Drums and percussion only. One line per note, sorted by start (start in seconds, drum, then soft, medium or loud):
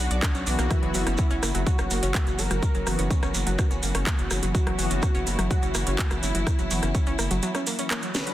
0.10 closed hi-hat medium
0.10 shekere soft
0.23 kick loud
0.23 cross-stick medium
0.23 clap loud
0.23 closed hi-hat medium
0.23 shekere soft
0.35 closed hi-hat soft
0.35 shekere soft
0.46 open hi-hat loud
0.46 shekere medium
0.59 cross-stick medium
0.59 closed hi-hat medium
0.59 shekere soft
0.71 kick loud
0.71 cross-stick medium
0.71 closed hi-hat medium
0.71 shekere soft
0.83 closed hi-hat soft
0.94 open hi-hat loud
0.94 shekere medium
1.07 cross-stick medium
1.07 closed hi-hat medium
1.07 shekere soft
1.17 kick loud
1.17 closed hi-hat medium
1.17 shekere medium
1.30 closed hi-hat soft
1.30 shekere soft
1.43 cross-stick medium
1.43 open hi-hat loud
1.43 shekere loud
1.55 closed hi-hat medium
1.55 shekere soft
1.67 kick loud
1.67 closed hi-hat medium
1.67 shekere medium
1.78 cross-stick medium
1.78 closed hi-hat soft
1.78 shekere soft
1.90 open hi-hat loud
1.90 shekere medium
2.03 closed hi-hat medium
2.03 shekere soft
2.15 kick loud
2.15 cross-stick medium
2.15 clap loud
2.15 closed hi-hat medium
2.15 shekere medium
2.27 closed hi-hat soft
2.27 shekere soft
2.38 open hi-hat medium
2.38 shekere medium
2.50 cross-stick medium
2.50 closed hi-hat medium
2.50 shekere soft
2.63 kick loud
2.63 closed hi-hat medium
2.63 shekere medium
2.75 closed hi-hat soft
2.75 shekere soft
2.87 cross-stick medium
2.87 open hi-hat loud
2.87 shekere medium
2.99 closed hi-hat medium
2.99 shekere soft
3.11 kick loud
3.11 closed hi-hat medium
3.11 shekere medium
3.23 cross-stick medium
3.23 closed hi-hat soft
3.23 shekere soft
3.34 open hi-hat medium
3.34 shekere medium
3.47 closed hi-hat medium
3.47 shekere soft
3.59 kick loud
3.59 cross-stick medium
3.59 closed hi-hat medium
3.59 shekere medium
3.71 closed hi-hat soft
3.71 shekere soft
3.83 open hi-hat loud
3.83 shekere medium
3.95 cross-stick medium
3.95 closed hi-hat medium
3.95 shekere soft
4.07 kick loud
4.07 clap loud
4.07 closed hi-hat medium
4.07 shekere soft
4.19 closed hi-hat soft
4.19 shekere soft
4.30 cross-stick medium
4.30 open hi-hat medium
4.30 shekere loud
4.42 closed hi-hat medium
4.42 shekere soft
4.55 kick loud
4.55 closed hi-hat medium
4.55 shekere soft
4.67 cross-stick medium
4.67 closed hi-hat soft
4.79 open hi-hat loud
4.79 shekere medium
4.90 closed hi-hat medium
4.90 shekere soft
5.02 kick loud
5.02 cross-stick medium
5.02 closed hi-hat medium
5.02 shekere medium
5.15 closed hi-hat soft
5.15 shekere soft
5.27 open hi-hat medium
5.27 shekere medium
5.39 cross-stick medium
5.39 closed hi-hat medium
5.39 shekere soft
5.51 kick loud
5.51 closed hi-hat medium
5.51 shekere soft
5.62 closed hi-hat soft
5.62 shekere soft
5.74 cross-stick medium
5.74 open hi-hat loud
5.74 shekere loud
5.87 closed hi-hat medium
5.87 shekere soft
5.99 kick loud
5.99 clap loud
5.99 closed hi-hat medium
5.99 shekere medium
6.11 cross-stick medium
6.11 closed hi-hat soft
6.11 shekere soft
6.23 open hi-hat medium
6.23 shekere medium
6.35 closed hi-hat medium
6.35 shekere soft
6.47 kick loud
6.47 cross-stick medium
6.47 closed hi-hat medium
6.47 shekere medium
6.59 closed hi-hat soft
6.59 shekere soft
6.71 open hi-hat loud
6.71 shekere medium
6.83 cross-stick medium
6.83 closed hi-hat medium
6.83 shekere soft
6.95 kick loud
6.95 closed hi-hat medium
6.95 shekere soft
7.06 closed hi-hat soft
7.06 shekere soft
7.19 cross-stick medium
7.19 open hi-hat medium
7.19 shekere medium
7.31 closed hi-hat medium
7.31 shekere soft
7.42 closed hi-hat medium
7.42 shekere medium
7.55 cross-stick medium
7.55 closed hi-hat soft
7.55 shekere soft
7.67 open hi-hat loud
7.67 shekere medium
7.78 closed hi-hat medium
7.78 shekere soft
7.90 cross-stick medium
7.90 clap loud
7.90 closed hi-hat medium
7.90 shekere soft
8.02 closed hi-hat soft
8.02 shekere soft
8.15 snare loud
8.15 open hi-hat medium
8.15 shekere loud
8.27 closed hi-hat medium
8.27 shekere soft